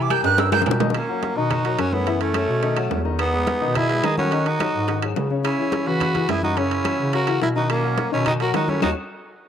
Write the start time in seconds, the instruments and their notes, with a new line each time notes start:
Already playing: bass clarinet C3
0.02 flute D6
0.10 grand piano G3 G4 A#4, flute G6, cowbell, high conga, low timbale, low agogo, claves
0.24 bass clarinet G2, grand piano G3 G4 A#4, flute F#6, cowbell, high bongo, high conga, high timbale
0.38 flute E6, cowbell, high conga, high timbale, low agogo
0.52 grand piano G3 G4 A#4, flute G6, high bongo, high conga, low timbale, low agogo, claves
0.62 low bongo
0.66 bass clarinet B2, cowbell, low conga, low timbale, low agogo
0.71 low bongo
0.80 grand piano D#3 D#4 D#5, cowbell, low bongo, low conga, low timbale
0.90 low bongo
0.94 tenor saxophone A#3, flute C#4, high bongo, high conga, high timbale, claves
1.09 grand piano F#3 F#4 A#4, high conga
1.23 high bongo, high conga, high timbale
1.36 bass clarinet B2, grand piano D#3 D#4 D#5, tenor saxophone D#4, flute F#4, high conga
1.50 high bongo, high conga, low conga, high timbale, claves
1.64 grand piano F#3 F#4 A#4, high conga, high timbale
1.78 bass clarinet F#2, tenor saxophone C#4, flute F#4, high bongo, low bongo, high conga, high timbale, claves
1.92 grand piano A3 A4 C#5, tenor saxophone B3, flute E4, high conga
2.07 grand piano E3 E4 E5, high bongo, high conga, high timbale
2.20 tenor saxophone A3, flute C#4, high bongo, high conga, high timbale
2.34 grand piano A3 A4 C#5, high bongo, high conga, high timbale, claves
2.49 bass clarinet B2, high conga
2.62 grand piano D#3 D#4 D#5, high bongo, high conga, high timbale
2.77 grand piano F#3 F#4 A4, high bongo, high conga, high timbale, claves
2.90 bass clarinet E2, high bongo, low bongo, high conga, low timbale
3.05 grand piano D#3 D#4 D#5, high bongo, high conga
3.19 tenor saxophone B3, flute D#4, high bongo, high conga, high timbale, claves
3.33 grand piano G#3 G#4 B4, high conga
3.47 high bongo, high conga, high timbale
3.61 bass clarinet B2, grand piano D#3 D#4 D#5, high conga
3.75 tenor saxophone E4, flute G#4, high bongo, high conga, low conga, high timbale, claves
3.89 grand piano G#3 G#4 B4, high conga, high timbale
4.03 bass clarinet D#3, tenor saxophone D#4, flute G#4, high bongo, low bongo, high conga, high timbale, low timbale, claves
4.18 grand piano F#3 F#4 A4, tenor saxophone C#4, flute F#4, high conga
4.32 grand piano D#3 D#4 D#5, high bongo, high conga, high timbale
4.46 tenor saxophone D#4, flute F#4, high bongo, high conga, high timbale
4.60 grand piano F#3 F#4 A4, high bongo, high conga, high timbale, claves
4.74 bass clarinet G#2, high conga
4.88 grand piano D#3 D#4 D#5, high bongo, high conga, high timbale
5.02 grand piano F#3 F#4 G#4, high bongo, high conga, high timbale, claves
5.16 bass clarinet C#3, high bongo, low bongo, high conga, low timbale
5.30 grand piano C#3 C#4 C#5, high bongo, high conga
5.44 tenor saxophone C#4, flute E4, high bongo, high conga, high timbale, claves
5.58 grand piano E3 E4 G#4, high conga
5.72 high bongo, high conga, high timbale
5.87 grand piano C#3 C#4 C#5, bass clarinet E3, tenor saxophone F#4, flute B4, high conga
6.00 high bongo, high conga, low conga, high timbale, claves
6.15 grand piano E3 E4 G#4, high conga, low conga, high timbale
6.28 bass clarinet F#2, tenor saxophone E4, flute G#4, high bongo, low bongo, high timbale, low timbale, claves
6.43 grand piano E3 E4 F#4, tenor saxophone D#4, flute F#4, high conga
6.56 grand piano C#3 C#4 C#5, tenor saxophone C#4, flute E4, high bongo, high timbale
6.71 high bongo, high conga, high timbale
6.85 grand piano E3 E4 F#4, high bongo, high conga, high timbale, claves
6.99 bass clarinet C#3, high conga
7.13 grand piano C#3 C#4 C#5, tenor saxophone F#4, flute A#4, high bongo, high conga, high timbale
7.27 grand piano E3 E4 F#4, high conga, high timbale, claves
7.41 bass clarinet B2, tenor saxophone E4, flute A#4, high bongo, low bongo, high conga
7.55 grand piano D#3 D#4 D#5, tenor saxophone D#4, flute F#4, high bongo, high conga
7.70 tenor saxophone A#3, flute C#4, high bongo, high conga, high timbale, claves
7.83 grand piano F#3 F#4 A#4, high conga
7.98 high bongo, high conga, high timbale
8.12 bass clarinet B2, grand piano D#3 D#4 D#5, tenor saxophone C#4, flute E4, high conga
8.26 tenor saxophone D#4, flute F#4, high bongo, high conga, low conga, high timbale, claves
8.40 grand piano F#3 F#4 A#4, tenor saxophone F#4, flute A#4, high conga, high timbale
8.54 bass clarinet D#3, tenor saxophone D#4, flute F#4, high bongo, low bongo, high conga, high timbale, low timbale, claves
8.68 grand piano F#3 F#4 A4, tenor saxophone C#4, flute E4, high conga
8.82 bass clarinet D#2, grand piano C#4 D#4 F#4, tenor saxophone D#4, flute F#4, low bongo, high conga, high timbale, claves